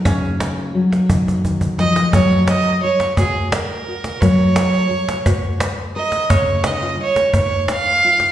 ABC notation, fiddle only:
X:1
M:3/4
L:1/8
Q:1/4=86
K:Gblyd
V:1 name="Fiddle"
z4 z e | d e d A B2 | d4 z e | d e d d f2 |]